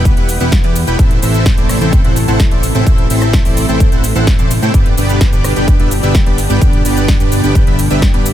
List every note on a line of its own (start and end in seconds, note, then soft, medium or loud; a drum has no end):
0.00 0.15 E1 loud
0.00 0.95 E3 medium
0.00 0.95 G3 medium
0.00 0.13 B3 medium
0.00 0.95 B3 medium
0.00 0.13 E4 medium
0.00 0.13 G4 medium
0.00 0.13 B4 medium
0.00 0.95 B4 medium
0.00 0.97 F#5 medium
0.00 0.13 G5 loud
0.00 downlifter medium
0.05 kick loud
0.05 closed hi-hat medium
0.05 shaker soft
0.17 0.38 E1 loud
0.17 0.30 B3 medium
0.17 0.30 E4 medium
0.17 0.30 G4 medium
0.17 0.30 B4 medium
0.17 0.30 F#5 loud
0.17 closed hi-hat soft
0.29 open hi-hat loud
0.29 shaker medium
0.40 0.62 E1 loud
0.40 0.53 B3 medium
0.40 0.53 E4 medium
0.40 0.53 G4 medium
0.40 0.53 B4 medium
0.40 0.53 F#5 loud
0.40 closed hi-hat soft
0.40 shaker soft
0.52 kick loud
0.52 snare loud
0.52 closed hi-hat medium
0.52 shaker soft
0.64 0.85 E2 loud
0.64 0.77 B3 medium
0.64 0.77 E4 medium
0.64 0.77 G4 medium
0.64 0.77 B4 medium
0.64 0.77 D5 loud
0.64 closed hi-hat soft
0.76 open hi-hat loud
0.76 shaker medium
0.87 0.97 E1 loud
0.87 0.97 B3 medium
0.87 0.97 E4 medium
0.87 0.97 G4 medium
0.87 0.97 B4 medium
0.87 0.97 G5 loud
0.87 closed hi-hat soft
0.87 shaker soft
0.99 1.20 A1 loud
0.99 4.70 C3 medium
0.99 4.70 E3 medium
0.99 4.70 A3 medium
0.99 1.20 C4 medium
0.99 4.70 E4 medium
0.99 4.70 A4 medium
0.99 1.20 A4 medium
0.99 1.20 C5 medium
0.99 kick loud
0.99 closed hi-hat medium
0.99 shaker soft
1.11 closed hi-hat soft
1.22 1.55 A1 loud
1.22 1.55 C4 medium
1.22 1.55 E4 medium
1.22 1.55 A4 medium
1.22 1.55 C5 medium
1.22 1.55 E5 medium
1.22 open hi-hat loud
1.22 shaker medium
1.34 closed hi-hat soft
1.34 shaker soft
1.46 kick loud
1.46 snare loud
1.46 closed hi-hat medium
1.46 shaker soft
1.58 1.79 A1 loud
1.58 1.78 C4 medium
1.58 1.78 E4 medium
1.58 1.78 A4 medium
1.58 1.78 C5 medium
1.58 1.78 D5 loud
1.58 closed hi-hat soft
1.58 shaker soft
1.69 cross-stick medium
1.69 open hi-hat loud
1.69 shaker medium
1.81 2.02 A1 loud
1.81 2.01 C4 medium
1.81 2.01 E4 medium
1.81 2.01 A4 medium
1.81 2.01 C5 medium
1.81 2.01 G5 loud
1.81 closed hi-hat soft
1.81 shaker soft
1.93 kick loud
1.93 closed hi-hat medium
1.93 shaker soft
2.04 2.26 A1 loud
2.04 2.17 C4 medium
2.04 2.17 E4 medium
2.04 2.17 A4 medium
2.04 2.17 C5 medium
2.04 2.17 F#5 loud
2.04 closed hi-hat soft
2.16 open hi-hat loud
2.16 shaker medium
2.28 2.49 A1 loud
2.28 2.41 C4 medium
2.28 2.41 E4 medium
2.28 2.41 A4 medium
2.28 2.41 C5 medium
2.28 2.41 F#5 loud
2.28 closed hi-hat soft
2.28 shaker soft
2.40 kick loud
2.40 snare loud
2.40 closed hi-hat medium
2.40 shaker soft
2.51 2.72 A1 loud
2.51 2.64 C4 loud
2.51 2.64 E4 medium
2.51 2.64 A4 medium
2.51 2.64 C5 medium
2.51 2.64 D5 loud
2.51 closed hi-hat soft
2.63 open hi-hat loud
2.63 shaker medium
2.75 2.84 A1 loud
2.75 2.85 C4 medium
2.75 2.85 E4 medium
2.75 2.85 A4 medium
2.75 2.85 C5 medium
2.75 2.85 G5 loud
2.75 closed hi-hat soft
2.75 shaker soft
2.87 3.08 A1 loud
2.87 3.07 C4 medium
2.87 3.07 E4 medium
2.87 3.07 C5 medium
2.87 kick loud
2.87 closed hi-hat medium
2.87 shaker soft
2.98 closed hi-hat soft
3.10 3.43 A1 loud
3.10 3.42 C4 medium
3.10 3.42 E4 medium
3.10 3.42 A4 medium
3.10 3.42 C5 medium
3.10 3.42 E5 medium
3.10 open hi-hat loud
3.10 shaker medium
3.22 cross-stick medium
3.22 closed hi-hat soft
3.22 shaker soft
3.33 kick loud
3.33 snare loud
3.33 closed hi-hat medium
3.33 shaker soft
3.45 3.66 A1 loud
3.45 3.66 C4 medium
3.45 3.66 E4 medium
3.45 3.66 A4 medium
3.45 3.66 C5 medium
3.45 3.66 D5 medium
3.45 open hi-hat medium
3.45 shaker soft
3.57 open hi-hat loud
3.57 shaker medium
3.69 3.90 A1 loud
3.69 3.89 C4 medium
3.69 3.89 E4 medium
3.69 3.89 A4 medium
3.69 3.89 C5 medium
3.69 3.89 G5 loud
3.69 closed hi-hat soft
3.69 shaker soft
3.80 kick loud
3.80 closed hi-hat medium
3.80 shaker soft
3.92 4.13 A1 loud
3.92 4.05 C4 medium
3.92 4.05 E4 medium
3.92 4.05 A4 medium
3.92 4.05 C5 medium
3.92 4.05 F#5 loud
3.92 closed hi-hat soft
3.92 shaker soft
4.04 open hi-hat loud
4.04 shaker medium
4.15 4.37 A1 loud
4.15 4.28 C4 medium
4.15 4.28 E4 medium
4.15 4.28 A4 medium
4.15 4.28 C5 medium
4.15 4.28 F#5 medium
4.15 closed hi-hat soft
4.15 shaker soft
4.27 kick loud
4.27 snare loud
4.27 closed hi-hat medium
4.27 shaker soft
4.39 4.60 A1 loud
4.39 4.52 C4 loud
4.39 4.52 E4 medium
4.39 4.52 A4 medium
4.39 4.52 C5 medium
4.39 4.52 D5 loud
4.39 closed hi-hat soft
4.39 shaker soft
4.51 open hi-hat loud
4.51 shaker medium
4.62 4.72 A2 loud
4.62 4.72 C4 medium
4.62 4.72 E4 medium
4.62 4.72 A4 medium
4.62 4.72 C5 medium
4.62 4.72 G5 loud
4.62 shaker soft
4.74 4.95 G1 medium
4.74 8.33 B2 medium
4.74 8.33 D3 medium
4.74 8.33 G3 medium
4.74 4.95 B3 medium
4.74 8.33 D4 medium
4.74 4.95 D4 medium
4.74 8.33 G4 medium
4.74 4.95 G4 medium
4.74 4.95 D5 medium
4.74 kick loud
4.74 closed hi-hat medium
4.74 shaker soft
4.86 closed hi-hat soft
4.98 5.30 G1 loud
4.98 5.30 B3 medium
4.98 5.30 D4 medium
4.98 5.30 G4 medium
4.98 5.30 B4 medium
4.98 5.30 D5 loud
4.98 open hi-hat loud
4.98 shaker medium
5.09 closed hi-hat soft
5.09 shaker soft
5.21 kick loud
5.21 snare loud
5.21 closed hi-hat medium
5.21 shaker soft
5.33 5.54 G1 loud
5.33 5.53 B3 medium
5.33 5.53 D4 medium
5.33 5.53 G4 medium
5.33 5.53 B4 medium
5.33 5.53 D5 medium
5.33 closed hi-hat soft
5.33 shaker soft
5.44 cross-stick medium
5.44 open hi-hat loud
5.44 shaker medium
5.56 5.77 G1 medium
5.56 5.76 B3 medium
5.56 5.76 D4 medium
5.56 5.76 G4 medium
5.56 5.76 B4 medium
5.56 5.76 G5 loud
5.56 closed hi-hat soft
5.56 shaker soft
5.68 kick loud
5.68 closed hi-hat medium
5.68 shaker soft
5.79 6.01 G1 loud
5.79 5.92 B3 medium
5.79 5.92 D4 medium
5.79 5.92 G4 medium
5.79 5.92 B4 medium
5.79 5.92 E5 loud
5.79 closed hi-hat soft
5.91 open hi-hat loud
5.91 shaker medium
6.03 6.24 G1 medium
6.03 6.16 B3 medium
6.03 6.16 D4 medium
6.03 6.16 G4 medium
6.03 6.16 B4 medium
6.03 6.16 E5 loud
6.03 closed hi-hat soft
6.03 shaker soft
6.15 kick loud
6.15 snare loud
6.15 closed hi-hat medium
6.15 shaker soft
6.26 6.47 G1 loud
6.26 6.39 B3 loud
6.26 6.39 D4 medium
6.26 6.39 G4 medium
6.26 6.39 B4 medium
6.26 6.39 D5 loud
6.26 closed hi-hat soft
6.38 open hi-hat loud
6.38 shaker medium
6.50 6.59 G1 loud
6.50 6.60 B3 medium
6.50 6.60 D4 medium
6.50 6.60 G4 medium
6.50 6.60 B4 medium
6.50 6.60 G5 loud
6.50 closed hi-hat soft
6.50 shaker soft
6.62 6.83 G1 medium
6.62 6.82 B3 medium
6.62 6.82 D4 medium
6.62 6.82 G4 medium
6.62 6.82 B4 medium
6.62 6.82 D5 medium
6.62 kick loud
6.62 closed hi-hat medium
6.62 shaker soft
6.73 closed hi-hat soft
6.85 7.18 G1 loud
6.85 7.17 B3 medium
6.85 7.17 D4 medium
6.85 7.17 G4 medium
6.85 7.17 B4 medium
6.85 7.17 D5 medium
6.85 open hi-hat loud
6.85 shaker medium
6.97 closed hi-hat soft
6.97 shaker soft
7.08 kick loud
7.08 snare loud
7.08 closed hi-hat medium
7.08 shaker soft
7.20 7.41 G1 loud
7.20 7.41 B3 medium
7.20 7.41 D4 medium
7.20 7.41 G4 medium
7.20 7.41 B4 medium
7.20 7.41 D5 medium
7.20 closed hi-hat soft
7.20 shaker soft
7.32 open hi-hat loud
7.32 shaker medium
7.44 7.65 G1 loud
7.44 7.64 B3 medium
7.44 7.64 D4 medium
7.44 7.64 G4 medium
7.44 7.64 B4 medium
7.44 7.64 G5 loud
7.44 closed hi-hat soft
7.44 shaker soft
7.55 kick loud
7.55 closed hi-hat medium
7.55 shaker soft
7.67 7.88 G1 loud
7.67 7.80 B3 medium
7.67 7.80 D4 medium
7.67 7.80 G4 medium
7.67 7.80 B4 medium
7.67 7.80 E5 loud
7.67 closed hi-hat soft
7.79 open hi-hat loud
7.79 shaker medium
7.90 8.12 G1 loud
7.90 8.03 B3 medium
7.90 8.03 D4 medium
7.90 8.03 G4 medium
7.90 8.03 B4 medium
7.90 8.03 E5 loud
7.90 closed hi-hat soft
7.90 shaker soft
8.02 kick loud
8.02 snare loud
8.02 closed hi-hat medium
8.02 shaker soft
8.14 8.33 G2 loud
8.14 8.27 B3 medium
8.14 8.27 D4 medium
8.14 8.27 G4 medium
8.14 8.27 B4 medium
8.14 8.27 D5 loud
8.14 closed hi-hat soft
8.26 open hi-hat loud
8.26 shaker medium